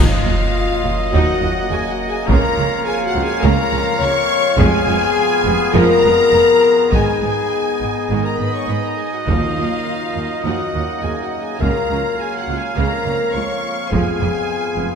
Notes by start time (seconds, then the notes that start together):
Already playing: F#2 F3 F#3 A#3 D#4 F4 D#5 F5, impact
0.00 F5
0.25 D#2 F#3 F4
0.84 D#2 F#3 F4
1.12 D#2 F3 D#4 F#4 F#5
1.42 D#2 F#3 F4
1.69 D#2 A#3 F#4 G#4 G#5
1.73 G#5
1.90 F#4 F#5
2.08 G#4 G#5
2.27 C#2 F2 C#3 A#3 F4 A#4 C#5 F5 A#5, taiko
2.57 C#2 F3 C#4
2.85 G#4 G#5
3.04 F#4 F#5
3.15 C#2 F3 C#4
3.22 G#4 G#5
3.42 C#2 C#3 A#3 A#4 A#5
3.72 C#2 F3 C#4
3.99 C#2 A#3 F4 C#5 C#6
4.58 F1 F2 F3 G#3 B3 G#4 F5 G#5, taiko
4.88 F1 F2 G#3 B3
5.46 F1 F2 G#3 B3
5.74 F1 F2 F3 G#3 A#4 A#5
6.03 F1 F2 G#3 B3
6.32 F1 F2 B3 F4
6.91 G#1 G#2 D#3 G#3 D#4 G#4 D#5 G#5, taiko
7.20 G#1 G#2 G#3 B3
7.80 G#1 G#2 G#3 B3
8.09 G#1 G#2 D#3 G#3
8.23 A#4 A#5
8.39 G#1 G#2 G#3 B3 B4 B5
8.54 C#5 C#6
8.68 G#1 G#2 B3 D#4 B4 B5
8.84 A#4 A#5
8.97 G#4 G#5
9.12 F#4 F#5
9.26 D#2 F#2 D#3 F3 A#3 D#4 F4 A#4 D#5 F5, taiko
9.56 D#2 F#3 F4
10.15 D#2 F#3 F4
10.44 D#2 F3 D#4 F#4 F#5
10.74 D#2 F#3 F4
11.03 D#2 A#3 F#4 G#4 G#5
11.23 F#4 F#5
11.41 G#4 G#5
11.60 C#2 C#3 A#3 F4 A#4 C#5 F5 A#5, taiko
11.91 C#2 F3 C#4
12.18 G#4 G#5
12.38 F#4 F#5
12.48 C#2 F3 C#4
12.56 G#4 G#5
12.77 C#2 F2 C#3 A#3 A#4 A#5
13.05 C#2 F3 C#4
13.34 C#2 A#3 F4 C#5 C#6
13.91 F1 F2 F3 G#3 B3 G#4 G#5, taiko
14.19 F1 F2 G#3 B3
14.77 F1 F2 G#3 B3